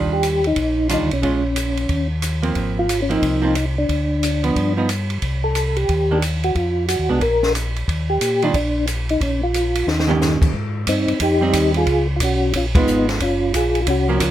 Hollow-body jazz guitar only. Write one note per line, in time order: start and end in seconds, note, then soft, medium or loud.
0.00 0.40 D#3 soft
0.00 0.40 G3 soft
0.00 0.41 D4 soft
0.00 0.41 F4 soft
0.89 1.08 D#3 soft
0.89 1.09 G3 soft
0.89 1.09 D4 soft
0.89 1.09 F4 medium
1.22 1.42 G#3 soft
1.22 1.42 C#4 medium
1.22 1.42 F4 soft
2.42 2.86 F3 soft
2.42 2.86 A#3 medium
2.42 2.86 C4 medium
3.09 3.40 F3 soft
3.09 3.41 A#3 medium
3.09 3.41 C4 medium
3.42 3.53 F3 medium
3.42 3.54 A#3 medium
3.42 3.54 C4 medium
4.43 4.74 F3 soft
4.43 4.75 B3 medium
4.77 4.87 F3 medium
4.77 4.88 B3 medium
4.77 4.88 D#4 medium
6.11 6.21 D#3 soft
6.11 6.21 A#3 soft
6.11 6.21 D4 medium
7.09 7.20 G#3 soft
7.09 7.20 B3 soft
7.09 7.21 D4 medium
8.43 8.53 D#3 medium
8.43 8.53 G3 medium
8.43 8.54 D4 medium
8.43 8.54 F4 medium
10.07 10.51 D#3 soft
10.07 10.51 A#3 medium
10.07 10.51 C#4 medium
10.07 10.51 G4 medium
11.41 11.84 G3 medium
11.41 11.85 C4 medium
11.41 11.85 D#4 medium
12.75 13.18 G#3 medium
12.75 13.18 B3 medium
12.75 13.18 F4 medium
14.08 14.31 F3 medium
14.08 14.31 A#3 medium
14.08 14.31 C#4 medium